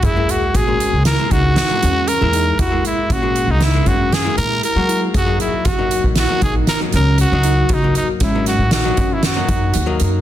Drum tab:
HH |xxxxxxxxxx|xxxxxxxxxx|xxxxxxxxxx|xxxxxxxxxx|
SD |----o-o---|----o-o---|----o-oo--|--ooo-o---|
BD |o-o--o----|o-o--o----|o-o--o----|o-o--o-o--|